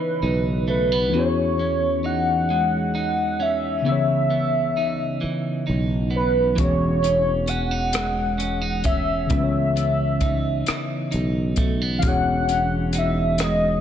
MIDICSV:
0, 0, Header, 1, 7, 480
1, 0, Start_track
1, 0, Key_signature, 4, "minor"
1, 0, Tempo, 909091
1, 597, Time_signature, 6, 3, 24, 8
1, 7290, End_track
2, 0, Start_track
2, 0, Title_t, "Soft synth lead"
2, 0, Program_c, 0, 80
2, 0, Note_on_c, 0, 71, 83
2, 337, Note_off_c, 0, 71, 0
2, 367, Note_on_c, 0, 71, 83
2, 607, Note_on_c, 0, 73, 88
2, 614, Note_off_c, 0, 71, 0
2, 1085, Note_on_c, 0, 78, 90
2, 1093, Note_off_c, 0, 73, 0
2, 1807, Note_on_c, 0, 76, 87
2, 1815, Note_off_c, 0, 78, 0
2, 2042, Note_off_c, 0, 76, 0
2, 2050, Note_on_c, 0, 76, 90
2, 2982, Note_off_c, 0, 76, 0
2, 3252, Note_on_c, 0, 71, 86
2, 3468, Note_off_c, 0, 71, 0
2, 3482, Note_on_c, 0, 73, 104
2, 3955, Note_on_c, 0, 78, 85
2, 3963, Note_off_c, 0, 73, 0
2, 4671, Note_off_c, 0, 78, 0
2, 4675, Note_on_c, 0, 76, 99
2, 4899, Note_off_c, 0, 76, 0
2, 4912, Note_on_c, 0, 76, 89
2, 5853, Note_off_c, 0, 76, 0
2, 6329, Note_on_c, 0, 77, 77
2, 6377, Note_on_c, 0, 78, 102
2, 6384, Note_off_c, 0, 77, 0
2, 6846, Note_off_c, 0, 78, 0
2, 6855, Note_on_c, 0, 76, 72
2, 7070, Note_off_c, 0, 76, 0
2, 7091, Note_on_c, 0, 75, 95
2, 7290, Note_off_c, 0, 75, 0
2, 7290, End_track
3, 0, Start_track
3, 0, Title_t, "Tine electric piano"
3, 0, Program_c, 1, 4
3, 0, Control_c, 1, 64, 127
3, 0, Note_on_c, 1, 49, 51
3, 0, Note_on_c, 1, 52, 42
3, 0, Note_on_c, 1, 59, 45
3, 0, Note_on_c, 1, 63, 48
3, 0, Note_on_c, 1, 73, 53
3, 566, Note_off_c, 1, 49, 0
3, 571, Note_off_c, 1, 52, 0
3, 573, Note_off_c, 1, 59, 0
3, 577, Note_on_c, 1, 52, 55
3, 578, Note_off_c, 1, 63, 0
3, 589, Note_on_c, 1, 59, 43
3, 592, Note_off_c, 1, 73, 0
3, 600, Note_on_c, 1, 61, 46
3, 603, Control_c, 1, 64, 0
3, 609, Note_on_c, 1, 66, 49
3, 620, Note_on_c, 1, 68, 47
3, 629, Note_on_c, 1, 73, 57
3, 701, Control_c, 1, 64, 127
3, 2006, Note_off_c, 1, 52, 0
3, 2011, Note_off_c, 1, 59, 0
3, 2017, Note_off_c, 1, 61, 0
3, 2019, Note_on_c, 1, 49, 49
3, 2021, Note_off_c, 1, 66, 0
3, 2027, Note_off_c, 1, 68, 0
3, 2032, Note_off_c, 1, 73, 0
3, 2032, Note_on_c, 1, 59, 49
3, 2043, Control_c, 1, 64, 0
3, 2045, Note_on_c, 1, 61, 47
3, 2058, Note_on_c, 1, 52, 48
3, 2070, Note_on_c, 1, 73, 59
3, 2134, Control_c, 1, 64, 127
3, 3447, Note_off_c, 1, 49, 0
3, 3449, Note_off_c, 1, 52, 0
3, 3453, Note_off_c, 1, 59, 0
3, 3456, Note_on_c, 1, 52, 49
3, 3460, Note_off_c, 1, 61, 0
3, 3467, Note_on_c, 1, 59, 51
3, 3472, Note_off_c, 1, 73, 0
3, 3479, Note_on_c, 1, 61, 50
3, 3484, Control_c, 1, 64, 0
3, 3489, Note_on_c, 1, 66, 47
3, 3498, Note_on_c, 1, 68, 44
3, 3509, Note_on_c, 1, 73, 55
3, 3579, Control_c, 1, 64, 127
3, 4885, Note_off_c, 1, 52, 0
3, 4891, Note_off_c, 1, 59, 0
3, 4893, Note_on_c, 1, 49, 54
3, 4897, Note_off_c, 1, 61, 0
3, 4902, Note_off_c, 1, 66, 0
3, 4906, Note_off_c, 1, 68, 0
3, 4909, Note_on_c, 1, 59, 51
3, 4912, Note_off_c, 1, 73, 0
3, 4922, Note_on_c, 1, 61, 45
3, 4923, Control_c, 1, 64, 0
3, 4934, Note_on_c, 1, 52, 51
3, 4946, Note_on_c, 1, 71, 46
3, 4966, Note_off_c, 1, 71, 0
3, 4982, Note_on_c, 1, 73, 57
3, 5019, Control_c, 1, 64, 127
3, 6324, Note_off_c, 1, 49, 0
3, 6325, Note_off_c, 1, 52, 0
3, 6331, Note_off_c, 1, 59, 0
3, 6331, Note_on_c, 1, 52, 51
3, 6338, Note_off_c, 1, 61, 0
3, 6345, Note_on_c, 1, 59, 49
3, 6353, Note_on_c, 1, 61, 50
3, 6363, Note_on_c, 1, 66, 54
3, 6364, Control_c, 1, 64, 0
3, 6368, Note_off_c, 1, 73, 0
3, 6371, Note_on_c, 1, 68, 53
3, 6383, Note_on_c, 1, 73, 60
3, 6468, Control_c, 1, 64, 127
3, 7290, Note_off_c, 1, 52, 0
3, 7290, Note_off_c, 1, 59, 0
3, 7290, Note_off_c, 1, 61, 0
3, 7290, Note_off_c, 1, 66, 0
3, 7290, Note_off_c, 1, 68, 0
3, 7290, Note_off_c, 1, 73, 0
3, 7290, End_track
4, 0, Start_track
4, 0, Title_t, "Clean electric guitar"
4, 0, Program_c, 2, 27
4, 0, Note_on_c, 2, 49, 63
4, 0, Note_on_c, 2, 52, 57
4, 0, Note_on_c, 2, 59, 50
4, 0, Note_on_c, 2, 63, 49
4, 117, Note_off_c, 2, 63, 0
4, 119, Note_on_c, 2, 63, 47
4, 355, Note_off_c, 2, 59, 0
4, 357, Note_on_c, 2, 57, 49
4, 485, Note_off_c, 2, 57, 0
4, 485, Note_on_c, 2, 59, 44
4, 596, Note_off_c, 2, 49, 0
4, 600, Note_off_c, 2, 52, 0
4, 600, Note_on_c, 2, 52, 71
4, 649, Note_off_c, 2, 59, 0
4, 842, Note_on_c, 2, 61, 47
4, 857, Note_off_c, 2, 63, 0
4, 1079, Note_on_c, 2, 63, 54
4, 1322, Note_on_c, 2, 56, 52
4, 1554, Note_off_c, 2, 63, 0
4, 1556, Note_on_c, 2, 63, 54
4, 1793, Note_off_c, 2, 61, 0
4, 1795, Note_on_c, 2, 61, 59
4, 2037, Note_off_c, 2, 52, 0
4, 2039, Note_on_c, 2, 49, 67
4, 2270, Note_off_c, 2, 61, 0
4, 2272, Note_on_c, 2, 59, 47
4, 2515, Note_off_c, 2, 63, 0
4, 2518, Note_on_c, 2, 63, 51
4, 2749, Note_off_c, 2, 56, 0
4, 2751, Note_on_c, 2, 52, 49
4, 2990, Note_off_c, 2, 63, 0
4, 2992, Note_on_c, 2, 63, 51
4, 3222, Note_off_c, 2, 59, 0
4, 3224, Note_on_c, 2, 59, 54
4, 3461, Note_off_c, 2, 49, 0
4, 3464, Note_off_c, 2, 52, 0
4, 3464, Note_on_c, 2, 52, 67
4, 3709, Note_off_c, 2, 59, 0
4, 3711, Note_on_c, 2, 61, 42
4, 3727, Note_off_c, 2, 63, 0
4, 3948, Note_off_c, 2, 61, 0
4, 3948, Note_on_c, 2, 61, 57
4, 4071, Note_off_c, 2, 61, 0
4, 4071, Note_on_c, 2, 63, 53
4, 4192, Note_on_c, 2, 56, 58
4, 4423, Note_off_c, 2, 63, 0
4, 4425, Note_on_c, 2, 61, 49
4, 4548, Note_off_c, 2, 61, 0
4, 4548, Note_on_c, 2, 63, 44
4, 4669, Note_on_c, 2, 61, 54
4, 4907, Note_off_c, 2, 52, 0
4, 4909, Note_on_c, 2, 49, 65
4, 4960, Note_off_c, 2, 63, 0
4, 5151, Note_off_c, 2, 61, 0
4, 5153, Note_on_c, 2, 59, 47
4, 5396, Note_on_c, 2, 63, 57
4, 5633, Note_off_c, 2, 56, 0
4, 5636, Note_on_c, 2, 52, 58
4, 5866, Note_off_c, 2, 63, 0
4, 5868, Note_on_c, 2, 63, 55
4, 6111, Note_off_c, 2, 59, 0
4, 6113, Note_on_c, 2, 57, 59
4, 6238, Note_off_c, 2, 57, 0
4, 6238, Note_on_c, 2, 59, 43
4, 6347, Note_off_c, 2, 49, 0
4, 6349, Note_off_c, 2, 52, 0
4, 6349, Note_on_c, 2, 52, 69
4, 6405, Note_off_c, 2, 59, 0
4, 6598, Note_on_c, 2, 61, 46
4, 6614, Note_off_c, 2, 63, 0
4, 6836, Note_on_c, 2, 63, 59
4, 7079, Note_on_c, 2, 56, 49
4, 7290, Note_off_c, 2, 52, 0
4, 7290, Note_off_c, 2, 56, 0
4, 7290, Note_off_c, 2, 61, 0
4, 7290, Note_off_c, 2, 63, 0
4, 7290, End_track
5, 0, Start_track
5, 0, Title_t, "Fretless electric bass"
5, 0, Program_c, 3, 35
5, 121, Note_on_c, 3, 35, 69
5, 602, Note_off_c, 3, 35, 0
5, 602, Note_on_c, 3, 40, 96
5, 2048, Note_off_c, 3, 40, 0
5, 2048, Note_on_c, 3, 37, 83
5, 2741, Note_off_c, 3, 37, 0
5, 3007, Note_on_c, 3, 35, 68
5, 3461, Note_off_c, 3, 35, 0
5, 3480, Note_on_c, 3, 28, 95
5, 4897, Note_off_c, 3, 28, 0
5, 4919, Note_on_c, 3, 37, 94
5, 5617, Note_off_c, 3, 37, 0
5, 5883, Note_on_c, 3, 35, 76
5, 6339, Note_off_c, 3, 35, 0
5, 6357, Note_on_c, 3, 28, 104
5, 7290, Note_off_c, 3, 28, 0
5, 7290, End_track
6, 0, Start_track
6, 0, Title_t, "Muted fretless electric bass strokes"
6, 2767, Note_on_c, 9, 29, 44
6, 2820, Note_off_c, 9, 29, 0
6, 5645, Note_on_c, 9, 29, 39
6, 5698, Note_off_c, 9, 29, 0
6, 7290, End_track
7, 0, Start_track
7, 0, Title_t, "Drums"
7, 3474, Note_on_c, 9, 42, 53
7, 3477, Note_on_c, 9, 36, 91
7, 3527, Note_off_c, 9, 42, 0
7, 3529, Note_off_c, 9, 36, 0
7, 3717, Note_on_c, 9, 42, 39
7, 3769, Note_off_c, 9, 42, 0
7, 3947, Note_on_c, 9, 42, 47
7, 4000, Note_off_c, 9, 42, 0
7, 4187, Note_on_c, 9, 42, 61
7, 4198, Note_on_c, 9, 37, 102
7, 4240, Note_off_c, 9, 42, 0
7, 4250, Note_off_c, 9, 37, 0
7, 4434, Note_on_c, 9, 42, 43
7, 4487, Note_off_c, 9, 42, 0
7, 4666, Note_on_c, 9, 42, 44
7, 4674, Note_on_c, 9, 36, 78
7, 4719, Note_off_c, 9, 42, 0
7, 4727, Note_off_c, 9, 36, 0
7, 4909, Note_on_c, 9, 42, 53
7, 4914, Note_on_c, 9, 36, 100
7, 4962, Note_off_c, 9, 42, 0
7, 4967, Note_off_c, 9, 36, 0
7, 5157, Note_on_c, 9, 42, 40
7, 5210, Note_off_c, 9, 42, 0
7, 5389, Note_on_c, 9, 42, 46
7, 5393, Note_on_c, 9, 36, 70
7, 5442, Note_off_c, 9, 42, 0
7, 5446, Note_off_c, 9, 36, 0
7, 5631, Note_on_c, 9, 42, 58
7, 5641, Note_on_c, 9, 37, 94
7, 5684, Note_off_c, 9, 42, 0
7, 5694, Note_off_c, 9, 37, 0
7, 5871, Note_on_c, 9, 42, 39
7, 5923, Note_off_c, 9, 42, 0
7, 6104, Note_on_c, 9, 42, 45
7, 6112, Note_on_c, 9, 36, 75
7, 6157, Note_off_c, 9, 42, 0
7, 6165, Note_off_c, 9, 36, 0
7, 6348, Note_on_c, 9, 42, 58
7, 6353, Note_on_c, 9, 36, 92
7, 6401, Note_off_c, 9, 42, 0
7, 6406, Note_off_c, 9, 36, 0
7, 6593, Note_on_c, 9, 42, 44
7, 6646, Note_off_c, 9, 42, 0
7, 6825, Note_on_c, 9, 42, 48
7, 6878, Note_off_c, 9, 42, 0
7, 7066, Note_on_c, 9, 42, 54
7, 7076, Note_on_c, 9, 37, 87
7, 7118, Note_off_c, 9, 42, 0
7, 7129, Note_off_c, 9, 37, 0
7, 7290, End_track
0, 0, End_of_file